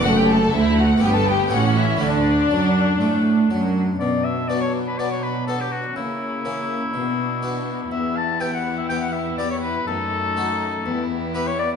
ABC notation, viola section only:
X:1
M:4/4
L:1/8
Q:1/4=122
K:D
V:1 name="Viola section"
A,2 A,2 B,2 C2 | D6- D z | [K:Bm] F,8 | ^A,4 B,4- |
B,8 | A,4 B,4 |]